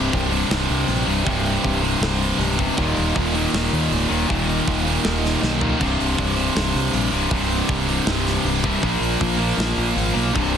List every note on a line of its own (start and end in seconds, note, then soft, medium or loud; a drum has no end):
0.00 0.12 C2 loud
0.00 0.12 G2 loud
0.00 0.13 C3 loud
0.12 0.43 C1 medium
0.12 0.31 C2 medium
0.12 0.31 G2 medium
0.12 0.32 C3 medium
0.12 kick medium
0.12 open hi-hat medium
0.31 0.46 C2 medium
0.31 0.47 G2 medium
0.31 0.48 C3 medium
0.31 open hi-hat medium
0.48 0.65 C1 medium
0.48 0.86 C2 loud
0.48 0.86 G2 loud
0.48 0.87 C3 loud
0.48 snare loud
0.70 0.85 C2 medium
0.70 open hi-hat medium
0.87 1.03 A#1 loud
0.87 1.05 C2 medium
0.87 1.06 G2 medium
0.87 1.06 C3 loud
0.87 open hi-hat medium
1.06 1.22 C1 medium
1.06 1.23 C2 medium
1.06 1.23 G2 medium
1.06 1.23 C3 medium
1.06 open hi-hat medium
1.24 1.56 C1 loud
1.24 1.61 C2 medium
1.24 1.62 G2 loud
1.24 1.63 C3 loud
1.24 kick loud
1.24 open hi-hat medium
1.46 open hi-hat medium
1.62 1.94 C1 medium
1.62 1.81 C2 medium
1.62 1.81 G2 medium
1.62 1.82 C3 loud
1.62 kick medium
1.62 open hi-hat medium
1.82 1.98 C2 medium
1.82 1.99 G2 loud
1.82 2.00 C3 medium
1.82 open hi-hat medium
1.99 2.31 C1 medium
1.99 2.37 C2 loud
1.99 2.38 G2 loud
1.99 2.38 C3 loud
1.99 snare loud
1.99 open hi-hat medium
2.22 open hi-hat medium
2.38 2.69 C#1 loud
2.38 2.57 C2 medium
2.38 2.58 G2 loud
2.38 2.59 C3 loud
2.38 open hi-hat medium
2.58 2.76 C2 medium
2.58 2.76 G2 loud
2.58 2.77 C3 loud
2.58 kick medium
2.58 open hi-hat medium
2.78 2.92 D#1 loud
2.78 3.14 D#2 loud
2.78 3.14 A#2 loud
2.78 3.16 D#3 loud
2.78 kick loud
2.97 3.11 D#1 medium
2.97 open hi-hat medium
3.15 3.45 D#1 loud
3.15 3.34 D#2 medium
3.15 3.34 A#2 loud
3.15 3.35 D#3 medium
3.15 kick medium
3.34 3.53 D#2 medium
3.34 3.54 A#2 medium
3.34 3.55 D#3 medium
3.34 open hi-hat medium
3.53 3.68 D#1 medium
3.53 3.90 D#2 loud
3.53 3.91 A#2 loud
3.53 3.92 D#3 loud
3.53 snare loud
3.53 open hi-hat loud
3.73 3.87 D#2 medium
3.73 open hi-hat medium
3.91 4.06 C#1 medium
3.91 4.09 D#2 medium
3.91 4.09 A#2 medium
3.91 4.10 D#3 loud
3.91 open hi-hat medium
4.10 4.25 D#1 medium
4.10 4.28 D#2 medium
4.10 4.28 A#2 loud
4.10 4.29 D#3 loud
4.10 open hi-hat medium
4.29 4.59 D#1 loud
4.29 4.65 D#2 medium
4.29 4.67 A#2 loud
4.29 4.66 D#3 loud
4.29 kick loud
4.29 open hi-hat medium
4.49 open hi-hat medium
4.67 4.97 D#1 medium
4.67 4.83 D#2 medium
4.67 4.84 A#2 medium
4.67 4.85 D#3 medium
4.67 kick medium
4.67 open hi-hat medium
4.85 5.02 D#2 medium
4.85 5.03 A#2 medium
4.85 5.03 D#3 loud
4.85 open hi-hat medium
5.04 5.35 D#1 loud
5.04 5.40 D#2 loud
5.04 5.41 A#2 loud
5.04 5.42 D#3 loud
5.04 snare loud
5.04 open hi-hat medium
5.25 snare soft
5.25 open hi-hat medium
5.41 5.72 B1 medium
5.41 5.58 D#2 medium
5.41 5.59 A#2 medium
5.41 5.59 D#3 loud
5.41 snare medium
5.59 5.78 D#2 medium
5.59 5.78 A#2 medium
5.59 5.78 D#3 loud
5.59 floor tom medium
5.79 5.95 C1 loud
5.79 6.16 C2 loud
5.79 6.17 G2 loud
5.79 6.18 C3 loud
5.79 kick loud
5.79 crash medium
6.00 6.14 C1 medium
6.00 open hi-hat medium
6.17 6.48 C1 medium
6.17 6.35 C2 medium
6.17 6.35 G2 medium
6.17 6.36 C3 loud
6.17 kick medium
6.17 open hi-hat medium
6.35 6.54 C2 medium
6.35 6.54 G2 medium
6.35 6.54 C3 medium
6.35 open hi-hat medium
6.55 6.71 C1 medium
6.55 6.92 C2 loud
6.55 6.93 G2 loud
6.55 6.93 C3 loud
6.55 snare loud
6.55 open hi-hat loud
6.75 6.90 C2 loud
6.75 open hi-hat medium
6.93 7.08 A#1 medium
6.93 7.10 C2 loud
6.93 7.11 G2 loud
6.93 7.12 C3 loud
6.93 open hi-hat medium
7.11 7.27 C1 medium
7.11 7.29 C2 medium
7.11 7.29 G2 medium
7.11 7.30 C3 loud
7.11 open hi-hat medium
7.30 7.61 C1 loud
7.30 7.67 C2 medium
7.30 7.68 G2 loud
7.30 7.68 C3 loud
7.30 kick loud
7.30 open hi-hat medium
7.50 open hi-hat medium
7.68 7.99 C1 medium
7.68 7.86 C2 medium
7.68 7.87 G2 medium
7.68 7.87 C3 medium
7.68 kick medium
7.68 open hi-hat medium
7.87 8.05 C2 medium
7.87 8.06 G2 medium
7.87 8.06 C3 loud
7.87 open hi-hat medium
8.06 8.37 C1 medium
8.06 8.44 C2 medium
8.06 8.44 G2 loud
8.06 8.45 C3 loud
8.06 snare loud
8.06 open hi-hat medium
8.27 snare soft
8.27 open hi-hat medium
8.44 8.74 C1 loud
8.44 8.62 C2 medium
8.44 8.62 G2 loud
8.44 8.62 C3 loud
8.44 open hi-hat medium
8.63 8.81 C2 medium
8.63 8.81 G2 medium
8.63 8.81 C3 loud
8.63 kick medium
8.63 open hi-hat medium
8.83 8.98 A#1 loud
8.83 9.19 A#2 loud
8.83 9.20 F3 loud
8.83 9.21 A#3 loud
8.83 kick loud
8.83 open hi-hat medium
9.00 9.16 A#1 medium
9.00 open hi-hat medium
9.20 9.51 A#1 loud
9.20 9.37 A#2 medium
9.20 9.37 F3 medium
9.20 9.38 A#3 loud
9.20 kick medium
9.20 open hi-hat medium
9.38 9.56 A#2 medium
9.38 9.56 F3 medium
9.38 9.57 A#3 loud
9.38 open hi-hat medium
9.57 9.73 A#1 medium
9.57 9.94 A#2 loud
9.57 9.94 F3 loud
9.57 9.95 A#3 loud
9.57 snare loud
9.57 open hi-hat medium
9.77 9.92 A#1 loud
9.77 open hi-hat medium
9.95 10.11 G#1 loud
9.95 10.12 A#2 medium
9.95 10.13 F3 loud
9.95 10.14 A#3 loud
9.95 open hi-hat medium
10.14 10.30 B1 medium
10.14 10.32 A#2 medium
10.14 10.32 F3 medium
10.14 10.33 A#3 medium
10.14 open hi-hat medium
10.33 10.57 C1 loud
10.33 10.57 C2 loud
10.33 10.57 G2 loud
10.33 10.57 C3 loud
10.33 kick loud
10.33 open hi-hat medium